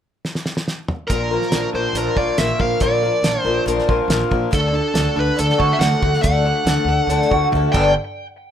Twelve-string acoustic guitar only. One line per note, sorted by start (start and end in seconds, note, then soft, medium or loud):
1.08 1.30 A#2 medium
1.08 1.31 D3 medium
1.08 1.31 F3 medium
1.08 1.32 A#3 medium
1.08 1.30 D4 medium
1.08 1.30 A#4 medium
1.31 1.51 F3 soft
1.31 1.53 A#3 soft
1.31 1.52 D4 soft
1.31 1.52 A#4 soft
1.52 1.74 F3 medium
1.52 1.75 A#3 medium
1.52 1.74 D4 medium
1.52 1.73 A#4 medium
1.75 1.95 F3 soft
1.75 1.97 A#3 soft
1.75 1.96 D4 soft
1.75 1.96 A#4 soft
1.96 2.17 A#2 medium
1.96 2.17 D3 medium
1.96 2.17 F3 medium
1.96 2.18 A#3 medium
1.96 2.16 D4 medium
1.96 2.15 A#4 medium
2.16 2.37 F3 soft
2.16 2.39 A#3 soft
2.16 2.38 D4 soft
2.16 2.38 A#4 soft
2.39 2.60 F3 medium
2.39 2.60 A#3 medium
2.39 2.59 D4 medium
2.39 2.58 A#4 medium
2.59 2.82 A#3 soft
2.59 2.81 D4 soft
2.59 2.81 A#4 soft
2.64 2.80 F3 soft
2.81 3.02 A#2 medium
2.81 3.03 D3 medium
2.81 3.03 F3 medium
2.81 3.03 A#3 medium
2.81 3.03 D4 medium
2.81 3.02 A#4 medium
3.03 3.22 F3 soft
3.03 3.24 A#3 soft
3.03 3.24 D4 soft
3.03 3.24 A#4 soft
3.23 3.45 F3 medium
3.23 3.46 A#3 soft
3.23 3.45 D4 medium
3.23 3.43 A#4 medium
3.45 3.66 F3 soft
3.45 3.66 A#3 medium
3.45 3.67 D4 soft
3.45 3.66 A#4 medium
3.66 3.87 A#2 medium
3.66 3.87 D3 medium
3.66 3.88 F3 medium
3.66 3.88 A#3 medium
3.66 3.88 D4 medium
3.66 3.88 A#4 medium
3.89 4.09 F3 soft
3.89 4.10 A#3 medium
3.89 4.10 D4 medium
3.89 4.10 A#4 medium
4.10 4.31 F3 medium
4.10 4.32 A#3 medium
4.10 4.31 D4 medium
4.10 4.30 A#4 medium
4.31 4.51 F3 soft
4.31 4.52 A#3 soft
4.31 4.51 D4 medium
4.31 4.52 A#4 medium
4.51 4.73 D3 medium
4.51 4.73 A3 medium
4.51 4.74 D4 medium
4.51 4.73 F#4 medium
4.51 4.73 A4 medium
4.74 4.96 F#4 soft
4.74 4.95 A4 soft
4.78 4.95 D4 soft
4.96 5.17 A3 medium
4.96 5.17 D4 medium
4.96 5.16 F#4 medium
4.96 5.15 A4 medium
5.16 5.37 D4 soft
5.16 5.38 F#4 soft
5.16 5.38 A4 medium
5.37 5.59 D3 medium
5.37 5.59 A3 medium
5.37 5.59 D4 medium
5.37 5.59 F#4 medium
5.37 5.57 A4 medium
5.58 5.80 D4 soft
5.58 5.81 F#4 soft
5.58 5.80 A4 soft
5.80 6.02 A3 medium
5.80 6.02 D4 medium
5.80 6.03 F#4 medium
5.80 6.01 A4 medium
6.03 6.22 D4 soft
6.03 6.24 F#4 soft
6.03 6.24 A4 medium
6.21 6.44 D3 medium
6.21 6.44 A3 medium
6.21 6.45 D4 medium
6.21 6.45 F#4 medium
6.21 6.44 A4 medium
6.45 6.66 D4 soft
6.45 6.67 F#4 soft
6.45 6.67 A4 medium
6.66 6.88 A3 medium
6.66 6.88 D4 medium
6.66 6.89 F#4 medium
6.66 6.87 A4 medium
6.89 7.10 D4 soft
6.89 7.10 F#4 soft
6.89 7.10 A4 medium
7.09 7.31 D3 medium
7.09 7.31 A3 medium
7.09 7.32 D4 medium
7.09 7.32 F#4 medium
7.09 7.29 A4 medium
7.30 7.54 D4 soft
7.30 7.53 F#4 medium
7.30 7.52 A4 medium
7.53 7.74 A3 medium
7.53 7.73 D4 medium
7.53 7.74 F#4 medium
7.53 7.74 A4 medium
7.73 7.91 G2 medium
7.73 7.91 D3 medium
7.73 7.91 G3 medium
7.73 7.91 B3 medium
7.73 7.91 D4 medium
7.73 7.92 A4 medium